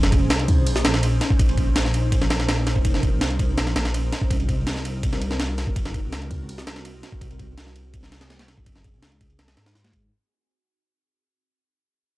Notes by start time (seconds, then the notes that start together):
Already playing: F1 C#4 D#4 G#4 C5
0.03 snare
0.12 kick, ride
0.21 C2
0.30 snare, ride
0.40 ride
0.48 kick, ride
0.67 A#1, ride
0.76 snare
0.85 A#1, snare, ride
0.94 snare
1.03 ride
1.21 snare, ride
1.31 kick
1.39 A#1 A#4, kick, ride
1.49 ride
1.58 kick, ride
1.76 snare, ride
1.85 snare
1.94 ride
2.12 kick, ride
2.22 snare
2.30 snare, ride
2.40 snare
2.48 snare, ride
2.67 snare, ride
2.76 F1, kick
2.85 kick, ride
2.94 snare
3.03 kick, ride
3.12 C2
3.21 snare, ride
3.31 ride
3.39 kick, ride
3.58 A#1, snare, ride
3.67 snare
3.76 A#1, snare, ride
3.85 snare
3.94 ride
4.13 snare, ride
4.22 kick
4.30 C2 C4 F#4 A#4, kick, ride
4.40 ride
4.49 kick, ride
4.67 snare, ride
4.76 snare
4.85 ride
5.03 kick, ride
5.13 snare
5.22 ride
5.31 snare
5.40 snare, ride
5.58 snare, ride
5.67 F#1, kick
5.76 kick, ride
5.85 snare
5.94 kick, ride
6.04 C#2
6.12 snare, ride
6.22 ride
6.31 kick, ride
6.49 C2, ride
6.58 snare
6.67 C2, snare, ride
6.76 snare
6.85 ride
7.03 snare, ride
7.12 kick
7.21 C2 G#4, kick, ride
7.31 ride
7.39 kick, ride
7.58 snare, ride
7.67 snare
7.76 ride
7.94 kick, ride
8.03 snare
8.12 snare, ride
8.21 snare, ride
8.30 snare, ride
8.39 snare, ride
8.48 snare, ride
8.57 F#1, kick
8.66 kick, ride
8.76 snare
8.84 kick, ride
8.94 C#2
9.02 snare, ride
9.12 ride
9.21 kick, ride
9.30 ride
9.39 C2, snare, ride
9.48 snare, ride
9.57 G#2, snare, ride
9.66 snare, ride
9.75 snare, ride
9.84 snare, ride
9.93 kick, ride